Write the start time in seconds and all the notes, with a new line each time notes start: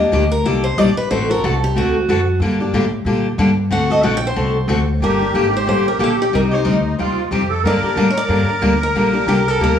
Already playing: D#2 D#5
0.00 A#3 D4 G4
0.12 D2 D#3 G3 A#3 D4 G4
0.32 A#4
0.44 C2 D#3 G3 A#3 D4 G4 A4
0.64 C5
0.78 A#1 D#3 G3 A#3 D4 G4 D5
0.97 B4, muted upright bass stroke
1.10 A1 D3 A3 C4 F#4 A4 C5
1.30 C4 F#4 A4 A#4
1.44 C2 D3 A3 C4 F#4 A4
1.64 G4
1.76 D2 D3 A3 C4 F#4 A4
2.08 F#2 D3 A3 C4 F#4 A4
2.40 G2 D3 G3 A#3 D4 G4
2.60 A#3 D4 G4
2.73 A2 D3 G3 A#3 D4 G4
3.05 A#2 D3 G3 A#3 D4 G4
3.38 G2 D3 G3 A#3 D4 G4
3.71 D2 D3 A3 C4 F#4 A4 F#5
3.90 C4 F#4 A4 D#5
4.03 A#1 D3 A3 C4 F#4 A4 F#5
4.17 G5
4.27 C5
4.36 C2 D3 A3 C4 F#4 A4
4.68 D2 D3 A3 C4 F#4 A4
5.00 G1 D3 G3 A#3 D4 G4 A#4
5.20 A#3 D4 G4
5.34 G#1 D3 G3 A#3 D4 G4
5.57 C5
5.67 A1 D3 G3 A#3 D4 G4 C5
5.88 A#4
5.99 A#1 D3 G3 A#3 D4 G4
6.04 A4
6.22 G4
6.33 C2 C3 G3 C4 D#4 G4 A#4
6.51 C4 D#4 G4 C5
6.65 D2 C3 G3 C4 D#4 G4
6.99 D#2 C3 G3 C4 D#4 F4 G4
7.31 F2 C3 G3 C4 D#4 G4
7.49 A4
7.63 G2 D3 G3 A#3 D4 G4 A#4 D5
7.82 A#3 D4 G4, muted upright bass stroke
7.96 A2 D3 G3 A#3 D4 G4
8.10 C#5
8.17 D5
8.28 G2 D3 G3 A#3 D4 G4
8.61 D2 D3 G3 A#3 D4 G4
8.83 A#4
8.94 A#1 D3 G3 A#3 D4 G4
9.13 A#3 D4 G4
9.26 C2 D3 G3 A#3 D4 G4
9.48 A4
9.59 D2 D3 G3 A#3 D4 G4
9.64 A#4